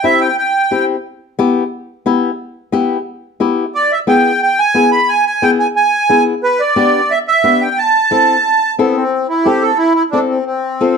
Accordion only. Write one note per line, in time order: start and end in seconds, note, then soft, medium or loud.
0.04 0.22 E5 loud
0.21 0.36 G5 medium
0.38 0.85 G5 medium
3.75 3.92 D5 loud
3.92 3.99 E5 medium
4.08 4.41 G5 loud
4.42 4.59 G5 loud
4.59 4.90 G#5 loud
4.92 5.09 B5 medium
5.09 5.25 G#5 loud
5.26 5.43 G#5 medium
5.43 5.50 G5 loud
5.60 5.67 G#5 medium
5.76 6.23 G#5 loud
6.43 6.61 B4 medium
6.60 7.12 D5 loud
7.11 7.18 E5 loud
7.28 7.62 E5 loud
7.61 7.79 G5 medium
7.78 8.75 A5 loud
8.79 8.96 B3 medium
8.96 9.27 C4 medium
9.29 9.47 E4 medium
9.45 9.63 G4 loud
9.61 9.78 A4 loud
9.78 9.93 E4 loud
9.94 10.03 E4 loud
10.12 10.20 D4 medium
10.29 10.44 C4 medium
10.46 10.97 C4 medium